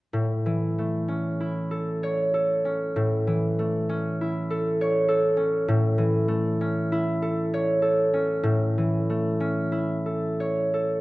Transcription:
0.13 2.95 A2 medium
0.46 3.26 E3 soft
0.78 3.58 A3 soft
1.08 2.64 C#4 soft
1.40 4.20 E4 soft
1.71 2.33 A4 soft
2.03 4.80 C#5 medium
2.34 4.49 A4 soft
2.65 3.88 C#4 soft
2.96 5.67 A2 medium
3.27 5.71 E3 soft
3.59 6.27 A3 soft
3.89 5.36 C#4 medium
4.21 6.91 E4 soft
4.50 5.07 A4 soft
4.81 7.53 C#5 medium
5.08 7.21 A4 medium
5.37 6.60 C#4 soft
5.68 8.42 A2 medium
5.98 8.76 E3 medium
6.28 9.08 A3 medium
6.61 8.12 C#4 medium
6.92 9.71 E4 medium
7.22 7.81 A4 medium
7.54 10.39 C#5 medium
7.82 10.05 A4 medium
8.14 9.39 C#4 soft
8.43 11.01 A2 medium
8.78 11.01 E3 soft
9.10 11.01 A3 soft
9.40 11.01 C#4 medium
9.72 11.01 E4 soft
10.06 10.73 A4 soft
10.40 11.01 C#5 soft
10.74 11.01 A4 soft

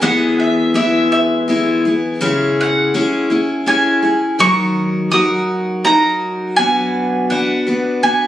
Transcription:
0.01 2.20 E3 medium
0.01 0.74 G#3 medium
0.01 0.74 B3 medium
0.01 0.76 E4 medium
0.01 0.76 G#4 loud
0.01 0.39 F#5 loud
0.40 0.73 E5 medium
0.74 1.47 G#3 medium
0.74 1.48 B3 medium
0.74 1.48 E4 medium
0.74 1.49 G#4 medium
0.74 1.11 E5 medium
1.12 1.81 E5 medium
1.48 1.84 G#3 medium
1.48 1.85 B3 medium
1.48 1.85 E4 medium
1.48 1.84 G#4 medium
1.85 2.21 B3 soft
1.85 2.21 E4 soft
1.85 2.21 G#4 soft
2.21 2.94 C#3 medium
2.21 2.93 G#3 medium
2.21 2.93 C#4 medium
2.21 2.94 E4 medium
2.21 2.94 G#4 medium
2.61 3.67 F#5 medium
2.94 3.30 G#3 medium
2.94 3.31 C#4 medium
2.94 3.30 E4 medium
2.94 3.29 G#4 medium
3.30 3.66 C#4 soft
3.30 3.67 E4 soft
3.30 3.66 G#4 medium
3.66 4.03 G#3 medium
3.66 4.03 C#4 medium
3.66 4.02 E4 medium
3.66 4.01 G#4 medium
3.66 4.36 G#5 medium
4.02 4.39 C#4 soft
4.02 4.39 E4 soft
4.02 4.39 G#4 soft
4.39 5.12 D#3 medium
4.39 5.11 F#3 medium
4.39 5.11 D#4 medium
4.39 5.13 F#4 medium
4.39 5.12 A#4 medium
4.39 5.11 C#6 loud
5.11 5.83 F#3 medium
5.11 5.84 D#4 medium
5.11 5.85 F#4 medium
5.11 5.86 A#4 medium
5.11 5.84 D#6 loud
5.84 6.57 F#3 medium
5.84 6.58 D#4 medium
5.84 6.57 F#4 medium
5.84 6.58 A#4 medium
5.84 6.56 A#5 loud
6.56 7.31 B2 medium
6.56 7.31 F#3 medium
6.56 7.30 B3 medium
6.56 7.29 D4 medium
6.56 7.30 F#4 medium
6.56 7.31 B4 medium
6.56 7.26 G#5 loud
7.30 7.67 B3 medium
7.30 7.67 D4 medium
7.30 7.66 F#4 medium
7.30 7.65 B4 medium
7.30 8.03 F#5 medium
7.67 8.02 B3 soft
7.67 8.02 D4 soft
7.67 8.03 F#4 soft
7.67 8.03 B4 medium
8.03 8.27 B3 medium
8.03 8.27 D4 medium
8.03 8.27 F#4 medium
8.03 8.27 B4 medium
8.03 8.27 G#5 medium

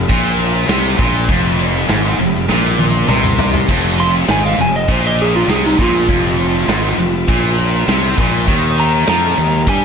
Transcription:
0.10 0.66 A#1 medium
0.10 0.68 A#2 medium
0.10 kick medium
0.10 crash medium
0.40 crash medium
0.68 0.97 C2 medium
0.68 0.97 C3 loud
0.68 snare loud
0.68 crash medium
0.98 1.27 A#1 medium
0.98 1.28 A#2 loud
0.98 kick loud
0.98 crash medium
1.28 1.85 F1 loud
1.28 1.88 F2 loud
1.28 kick loud
1.28 crash medium
1.59 crash medium
1.88 2.17 G#1 loud
1.88 2.18 G#2 loud
1.88 snare loud
1.88 crash medium
2.19 2.47 F1 medium
2.19 2.43 F2 medium
2.19 crash medium
2.34 snare soft
2.49 3.05 A#1 loud
2.49 3.08 A#2 medium
2.49 snare medium
2.78 high tom medium
3.08 3.65 C2 medium
3.08 3.68 C3 loud
3.08 mid tom medium
3.24 mid tom medium
3.38 floor tom loud
3.54 floor tom medium
3.69 4.25 F1 medium
3.69 4.28 F2 loud
3.69 kick medium
3.69 crash loud
3.69 crash medium
3.99 4.14 C6 medium
3.99 crash medium
4.28 4.57 G#1 medium
4.28 4.58 G#2 medium
4.28 4.44 G#5 loud
4.28 snare loud
4.28 crash medium
4.46 4.60 F5 medium
4.58 4.87 F1 medium
4.58 4.83 F2 medium
4.58 4.75 G#5 medium
4.58 crash medium
4.76 4.91 D#5 medium
4.88 5.45 A#1 loud
4.88 5.48 A#2 loud
4.88 5.07 C5 medium
4.88 kick loud
4.88 crash medium
5.07 5.20 D#5 medium
5.19 5.35 G#4 medium
5.19 crash medium
5.36 5.49 F4 medium
5.48 5.76 C2 medium
5.48 5.78 C3 medium
5.48 5.64 G#4 medium
5.48 snare loud
5.48 crash medium
5.66 5.80 D#4 medium
5.79 6.07 A#1 loud
5.79 6.08 A#2 medium
5.79 7.56 F4 medium
5.79 kick loud
5.79 crash medium
6.08 6.65 F1 medium
6.08 6.67 F2 loud
6.08 kick loud
6.08 crash medium
6.39 crash medium
6.68 6.96 G#1 loud
6.68 6.97 G#2 loud
6.68 snare loud
6.68 crash medium
6.98 7.26 F1 medium
6.98 7.22 F2 medium
6.98 crash medium
7.28 7.84 A#1 loud
7.28 7.87 A#2 loud
7.28 kick loud
7.28 crash medium
7.58 crash medium
7.87 8.16 C2 loud
7.87 8.17 C3 loud
7.87 snare loud
7.87 crash medium
8.18 8.46 A#1 loud
8.18 8.47 A#2 loud
8.18 kick loud
8.18 crash medium
8.48 9.04 D#2 medium
8.48 9.07 D#3 loud
8.48 kick medium
8.48 crash medium
8.78 9.08 A#5 loud
8.78 crash medium
9.07 9.36 F2 medium
9.07 9.37 F3 loud
9.07 9.66 A#5 loud
9.07 snare loud
9.07 crash medium
9.37 9.66 D#2 medium
9.37 9.61 D#3 medium
9.37 crash medium
9.52 snare soft
9.67 9.85 G2 medium
9.67 9.85 G3 medium
9.67 9.83 G#5 medium
9.67 kick loud
9.67 crash medium

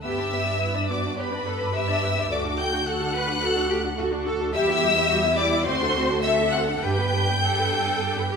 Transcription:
0.02 2.27 G2 medium
0.02 0.17 B3 medium
0.02 0.57 G4 medium
0.02 0.16 B4 medium
0.02 0.86 E5 medium
0.02 0.85 E6 loud
0.17 0.32 D4 medium
0.17 0.32 D5 medium
0.32 0.46 B3 medium
0.32 0.46 B4 medium
0.46 0.61 D4 medium
0.46 0.61 D5 medium
0.60 0.74 B3 medium
0.60 0.68 E4 medium
0.60 0.74 B4 medium
0.75 0.89 D4 medium
0.75 0.89 D5 medium
0.90 1.04 B3 medium
0.90 1.18 F#4 medium
0.90 1.04 B4 medium
0.90 1.17 D5 medium
0.90 1.18 D6 medium
1.04 1.18 D4 medium
1.04 1.18 D5 medium
1.18 1.31 B3 medium
1.18 1.26 G4 medium
1.18 1.31 B4 medium
1.18 1.75 B4 medium
1.18 1.74 B5 medium
1.32 1.47 D4 medium
1.32 1.47 D5 medium
1.47 1.61 B3 medium
1.47 1.74 A4 medium
1.47 1.61 B4 medium
1.61 1.75 D4 medium
1.61 1.75 D5 medium
1.75 1.88 B3 medium
1.75 2.30 G4 medium
1.75 1.88 B4 medium
1.75 2.31 E5 medium
1.75 2.31 E6 loud
1.89 2.03 D4 medium
1.89 2.03 D5 medium
2.03 2.17 B3 medium
2.03 2.17 B4 medium
2.18 2.32 D4 medium
2.18 2.31 D5 medium
2.31 4.50 D2 medium
2.31 2.86 F#4 medium
2.31 2.44 F#4 medium
2.31 2.44 A4 medium
2.31 2.40 D5 medium
2.31 2.59 D6 medium
2.46 2.59 D4 medium
2.46 2.58 F#4 medium
2.57 2.72 F#4 medium
2.57 2.73 A4 medium
2.57 2.87 G5 medium
2.57 2.86 G6 loud
2.73 2.87 D4 medium
2.73 2.86 F#4 medium
2.86 3.00 F#4 medium
2.86 3.14 A4 medium
2.86 3.00 A4 medium
2.86 4.27 F#5 medium
2.86 4.26 F#6 loud
3.01 3.14 D4 medium
3.01 3.14 F#4 medium
3.14 3.27 F#4 medium
3.14 3.29 A4 medium
3.14 3.42 B4 medium
3.28 3.42 D4 medium
3.28 3.41 F#4 medium
3.41 3.54 F#4 medium
3.41 3.70 A4 medium
3.41 3.55 A4 medium
3.56 3.70 D4 medium
3.56 3.68 F#4 medium
3.69 3.82 F#4 medium
3.69 3.77 G4 medium
3.69 3.84 A4 medium
3.83 3.98 D4 medium
3.83 3.96 F#4 medium
3.98 4.11 F#4 medium
3.98 4.06 F#4 medium
3.98 4.11 A4 medium
4.12 4.26 D4 medium
4.12 4.25 F#4 medium
4.25 4.39 F#4 medium
4.25 4.53 A4 medium
4.25 4.41 A4 medium
4.40 4.54 D4 medium
4.40 4.54 F#4 medium
4.54 5.66 E2 medium
4.54 4.67 G3 medium
4.54 5.09 G4 loud
4.54 4.67 G4 medium
4.54 5.34 E5 loud
4.54 5.34 E6 loud
4.68 4.82 B3 medium
4.68 4.82 E4 medium
4.82 4.96 G3 medium
4.82 4.96 G4 medium
4.96 5.10 B3 medium
4.96 5.10 E4 medium
5.09 5.23 G3 medium
5.09 5.17 F#4 medium
5.09 5.23 G4 medium
5.23 5.38 B3 medium
5.23 5.38 E4 medium
5.37 5.52 G3 medium
5.37 5.65 E4 medium
5.37 5.52 G4 medium
5.37 5.66 D5 medium
5.37 5.66 D6 loud
5.52 5.66 B3 medium
5.52 5.66 E4 medium
5.65 6.83 D2 medium
5.65 5.79 C4 medium
5.65 5.79 F#4 medium
5.65 6.23 F#4 loud
5.65 6.24 C5 loud
5.65 6.22 C6 loud
5.81 5.95 D4 medium
5.81 5.95 A4 medium
5.95 6.09 C4 medium
5.95 6.09 F#4 medium
6.10 6.24 D4 medium
6.10 6.24 A4 medium
6.22 6.37 C4 medium
6.22 6.38 F#4 medium
6.22 6.81 A4 medium
6.22 6.52 E5 loud
6.22 6.30 E6 loud
6.39 6.54 D4 medium
6.39 6.54 A4 medium
6.52 6.68 C4 medium
6.52 6.68 F#4 medium
6.52 6.82 F#5 medium
6.52 6.60 F#6 medium
6.68 6.83 D4 medium
6.68 6.83 A4 medium
6.81 8.37 G2 medium
6.81 6.97 D4 medium
6.81 6.97 G4 medium
6.81 7.36 B4 medium
6.81 8.37 G5 medium
6.81 8.37 G6 loud
6.98 7.13 B3 medium
6.98 7.13 B4 medium
7.13 7.28 D4 medium
7.13 7.28 G4 medium
7.29 7.43 B3 medium
7.29 7.43 B4 medium
7.41 7.57 D4 medium
7.41 7.57 G4 medium
7.41 8.27 A4 medium
7.58 7.72 B3 medium
7.58 7.73 B4 medium
7.73 7.87 D4 medium
7.73 7.87 G4 medium
7.88 8.02 B3 medium
7.88 8.02 B4 medium
8.02 8.16 D4 medium
8.02 8.15 G4 medium
8.17 8.32 B3 medium
8.17 8.32 B4 medium
8.31 8.37 D4 medium
8.31 8.37 G4 medium

